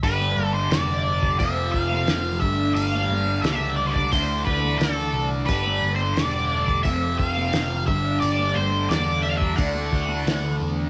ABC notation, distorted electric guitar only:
X:1
M:4/4
L:1/8
Q:1/4=88
K:Ddor
V:1 name="Distorted electric guitar" clef=bass
[G,,D,G,]4 [F,,C,F,]3 [G,,D,G,]- | [G,,D,G,]4 [D,A,D]4 | [G,,D,G,]4 [F,,C,F,]3 [G,,D,G,]- | [G,,D,G,]4 [D,A,D]4 |]